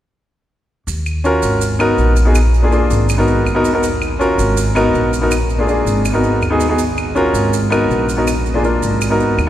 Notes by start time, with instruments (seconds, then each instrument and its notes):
0.87 upright bass D#2, maracas
1.06 claves, maracas
1.24 grand piano C#4 F4 F#4 A#4, maracas
1.42 upright bass G#1, maracas
1.61 maracas
1.79 grand piano B3 D#4 F#4 A#4, claves, maracas
1.98 upright bass A#1, maracas
2.16 maracas
2.25 grand piano B3 D#4 F#4 G#4
2.35 claves, maracas
2.54 maracas
2.62 grand piano A#3 D4 F4 G#4
2.71 grand piano A#3 D4 F4 G#4, maracas
2.90 upright bass G#1, maracas
3.09 claves, maracas
3.18 grand piano B3 D#4 F#4 A#4
3.28 maracas
3.46 upright bass D#2, claves, maracas
3.54 grand piano B3 D#4 F#4 A#4
3.65 maracas
3.73 grand piano B3 D#4 F#4 A#4
3.83 maracas
4.02 claves, maracas
4.19 grand piano C#4 F4 F#4 A#4, maracas
4.38 upright bass G#1, maracas
4.57 maracas
4.75 grand piano B3 D#4 F#4 A#4, claves, maracas
4.94 upright bass A#1, maracas
5.13 maracas
5.21 grand piano B3 D#4 F#4 A#4
5.31 claves, maracas
5.49 maracas
5.59 grand piano A#3 D4 F4 G#4
5.67 grand piano A#3 D4 F4 G#4, maracas
5.86 upright bass G#1, maracas
6.05 claves, maracas
6.13 grand piano B3 D#4 F#4 A#4
6.24 maracas
6.41 upright bass D#2, claves, maracas
6.50 grand piano B3 D#4 F#4 G#4
6.60 maracas
6.68 grand piano B3 D#4 F#4 G#4
6.79 maracas
6.97 claves, maracas
7.15 grand piano C#4 F4 F#4 A#4, maracas
7.33 upright bass G#1, maracas
7.53 maracas
7.70 grand piano B3 D#4 F#4 A#4, claves, maracas
7.89 upright bass A#1, maracas
8.09 maracas
8.17 grand piano B3 D#4 F#4 A#4
8.27 claves, maracas
8.46 maracas
8.54 grand piano A#3 D4 F4 G#4
8.64 grand piano A#3 D4 F4 A#4, maracas
8.82 upright bass G#1, maracas
9.01 claves, maracas
9.10 grand piano B3 D#4 F#4 A#4
9.20 maracas
9.38 upright bass D#2, claves, maracas